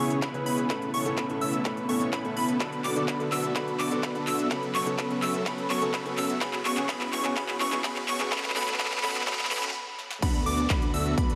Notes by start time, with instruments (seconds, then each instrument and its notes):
Already playing: grand piano C#3, string section C#3 B3 E4, riser
0.00 analog synth bass C#2, grand piano B3 C#4 E4 G#4, supersaw synth B3 C#4 E4 G#4 C#5, digital synth lead C#6
0.10 closed hi-hat
0.22 analog synth bass C#2, supersaw synth B3 C#4 E4 G#4 B4, digital synth lead B5, kick, clap, closed hi-hat
0.34 grand piano C#3 B3 C#4 E4 B4, closed hi-hat
0.46 analog synth bass C#2, supersaw synth B3 C#4 E4 G#4 B4, digital synth lead B5, open hi-hat
0.58 closed hi-hat
0.69 analog synth bass A1, grand piano A2 B3 C#4 E4 A4, string section A3, supersaw synth B3 C#4 E4 A4 B4, digital synth lead B5, kick, clap, closed hi-hat
0.82 closed hi-hat
0.94 analog synth bass A1, supersaw synth B3 C#4 E4 A4 C#5, digital synth lead C#6, open hi-hat
1.05 grand piano A2 B3 C#4 E4 A4, closed hi-hat
1.17 analog synth bass A1, supersaw synth B3 C#4 E4 A4 B4, digital synth lead B5, kick, clap, closed hi-hat
1.29 grand piano A2 B3 C#4 E4 A4, closed hi-hat
1.41 analog synth bass A1, supersaw synth B3 C#4 E4 A4 E5, digital synth lead E6, open hi-hat
1.53 closed hi-hat
1.65 analog synth bass A1, grand piano A2 B3 C#4 E4 A4, supersaw synth B3 C#4 E4 A4 B4, digital synth lead B5, kick, clap, closed hi-hat
1.77 closed hi-hat
1.88 analog synth bass A1, grand piano A2 B3 C#4 E4 A4, supersaw synth B3 C#4 E4 A4 C#5, digital synth lead C#6, open hi-hat
2.00 grand piano A2 B3 C#4 E4 C#5, closed hi-hat
2.13 analog synth bass A1, supersaw synth B3 C#4 E4 A4 B4, digital synth lead B5, kick, clap, closed hi-hat
2.24 grand piano A2 B3 C#4 E4 A4, closed hi-hat
2.36 analog synth bass A2, supersaw synth B3 C#4 E4 A4 B4, digital synth lead B5, open hi-hat
2.49 closed hi-hat
2.60 analog synth bass D2, grand piano D3 B3 D4 F#4 A4, string section D3 F#4, supersaw synth B3 D4 F#4 A4 B4, digital synth lead B5, kick, clap, closed hi-hat
2.72 closed hi-hat
2.84 analog synth bass D2, supersaw synth B3 D4 F#4 A4 D5, digital synth lead D6, clap, open hi-hat
2.95 grand piano D3 B3 D4 F#4 A4, closed hi-hat
3.08 analog synth bass D2, supersaw synth B3 D4 F#4 A4 B4, digital synth lead B5, kick, clap, closed hi-hat
3.19 grand piano D3 B3 D4 F#4 A4, closed hi-hat
3.32 analog synth bass D2, supersaw synth B3 D4 F#4 A4 E5, digital synth lead E6, clap, open hi-hat
3.44 closed hi-hat
3.55 analog synth bass D2, grand piano D3 B3 D4 F#4 A4, supersaw synth B3 D4 F#4 A4 B4, digital synth lead B5, kick, clap, closed hi-hat
3.68 closed hi-hat
3.79 analog synth bass D2, supersaw synth B3 D4 F#4 A4 D5, digital synth lead D6, clap, open hi-hat
3.91 grand piano D3 B3 D4 F#4 A4, closed hi-hat
4.03 analog synth bass D2, supersaw synth B3 D4 F#4 A4 B4, digital synth lead B5, kick, clap, closed hi-hat
4.14 grand piano D3 B3 D4 F#4 A4, closed hi-hat
4.27 analog synth bass D2, supersaw synth B3 D4 F#4 A4 E5, digital synth lead E6, clap, open hi-hat
4.39 closed hi-hat
4.50 analog synth bass F#2, grand piano C#3 B3 C#4 F#4 A4, string section F#3 C#4 A4, supersaw synth B3 C#4 F#4 A4 B4, digital synth lead B5, kick, clap, closed hi-hat
4.63 closed hi-hat
4.75 analog synth bass F#2, supersaw synth B3 C#4 F#4 A4 C#5, digital synth lead C#6, clap, open hi-hat
4.86 grand piano C#3 B3 C#4 F#4 A4, closed hi-hat
4.99 analog synth bass F#2, supersaw synth B3 C#4 F#4 A4 B4, digital synth lead B5, kick, clap, closed hi-hat
5.10 grand piano C#3 B3 C#4 F#4 A4, closed hi-hat
5.22 analog synth bass F#2, supersaw synth B3 C#4 F#4 A4 E5, digital synth lead E6, clap, open hi-hat
5.34 closed hi-hat
5.46 analog synth bass F#2, grand piano C#3 B3 C#4 F#4 A4, supersaw synth B3 C#4 F#4 A4 B4, digital synth lead B5, kick, clap, closed hi-hat
5.58 closed hi-hat
5.70 analog synth bass F#2, supersaw synth B3 C#4 F#4 A4 C#5, digital synth lead C#6, clap, open hi-hat
5.81 grand piano C#3 B3 C#4 F#4 A4, closed hi-hat
5.94 analog synth bass F#2, supersaw synth B3 C#4 F#4 A4 B4, digital synth lead B5, kick, clap, closed hi-hat
6.05 grand piano C#3 B3 C#4 F#4 A4, closed hi-hat
6.17 analog synth bass F#2, supersaw synth B3 C#4 F#4 A4 E5, digital synth lead E6, clap, open hi-hat
6.29 closed hi-hat
6.41 analog synth bass C#2, grand piano C#3 B3 C#4 F#4 G#4, string section C#3 B3 E4, supersaw synth B3 C#4 F#4 G#4 B4, digital synth lead B5, kick, clap, closed hi-hat
6.53 clap, closed hi-hat
6.65 analog synth bass C#2, supersaw synth B3 C#4 F#4 G#4 C#5, digital synth lead C#6, clap, open hi-hat
6.76 grand piano C#3 B3 C#4 F#4 G#4, clap, closed hi-hat
6.88 analog synth bass C#2, grand piano C#3 B3 C#4 F#4 G#4, supersaw synth B3 C#4 F#4 G#4 B4, digital synth lead B5, kick, clap, closed hi-hat
7.01 clap, closed hi-hat
7.13 analog synth bass C#2, supersaw synth B3 C#4 F#4 G#4 C#5, digital synth lead C#6, clap, open hi-hat
7.24 grand piano C#3 B3 C#4 F#4 G#4, clap, closed hi-hat
7.36 analog synth bass C#2, grand piano C#3 B3 C#4 F#4 G#4, supersaw synth B3 C#4 F#4 G#4 B4, digital synth lead B5, kick, clap, closed hi-hat
7.49 clap, closed hi-hat
7.60 analog synth bass C#2, supersaw synth B3 C#4 F#4 G#4 C#5, digital synth lead C#6, clap, open hi-hat
7.72 grand piano C#3 B3 C#4 F#4 G#4, clap, closed hi-hat
7.83 analog synth bass C#2, grand piano C#3 B3 C#4 F#4 G#4, supersaw synth B3 C#4 F#4 G#4 B4, digital synth lead B5, kick, clap, closed hi-hat
7.96 clap, closed hi-hat
8.08 analog synth bass C#2, supersaw synth B3 C#4 F#4 G#4 C#5, digital synth lead C#6, clap, open hi-hat
8.19 grand piano C#3 B3 C#4 F#4 G#4, clap, closed hi-hat
8.31 grand piano C#3 B3 C#4 A4, string section A3, supersaw synth B3 C#4 F#4 A4 B4, digital synth lead B5, kick, clap, closed hi-hat
8.38 clap
8.44 clap, closed hi-hat
8.50 clap
8.55 grand piano C#3 B3 C#4 F#4 A4, supersaw synth B3 C#4 F#4 A4 B4, digital synth lead B5, clap, open hi-hat
8.62 clap
8.68 clap, closed hi-hat
8.74 clap
8.79 analog synth bass A1, grand piano C#3 B3 C#4 F#4 A4, supersaw synth B3 C#4 F#4 A4 B4, digital synth lead B5, kick, clap, closed hi-hat
8.86 clap
8.92 clap, closed hi-hat
8.98 clap
9.03 grand piano C#3 B3 C#4 F#4 A4, supersaw synth B3 C#4 F#4 A4 B4, digital synth lead B5, clap, open hi-hat
9.09 clap
9.15 clap, closed hi-hat
9.21 clap
9.26 grand piano C#3 B3 C#4 F#4 A4, supersaw synth B3 C#4 F#4 A4 B4, digital synth lead B5, kick, clap, closed hi-hat
9.33 clap
9.39 clap, closed hi-hat
9.45 clap
9.50 analog synth bass A1, grand piano C#3 B3 C#4 F#4 A4, supersaw synth B3 C#4 F#4 A4 B4, digital synth lead B5, clap, open hi-hat
9.57 clap
9.63 clap, closed hi-hat
9.69 clap
9.99 snare
10.11 snare
10.22 analog synth bass D2, string section D3 B3 F#4, supersaw synth B3 D4 F#4 A4 B4, digital synth lead B5, kick, closed hi-hat, crash, downlifter
10.34 closed hi-hat
10.46 analog synth bass D2, supersaw synth B3 D4 F#4 A4 D5, digital synth lead D6, open hi-hat
10.58 closed hi-hat
10.70 analog synth bass D2, supersaw synth B3 D4 F#4 A4 B4, digital synth lead B5, kick, clap, closed hi-hat
10.82 closed hi-hat
10.94 analog synth bass D2, supersaw synth B3 D4 F#4 A4 E5, digital synth lead E6, open hi-hat
11.06 closed hi-hat
11.18 analog synth bass D2, supersaw synth B3 D4 F#4 A4 B4, digital synth lead B5, kick, closed hi-hat
11.30 closed hi-hat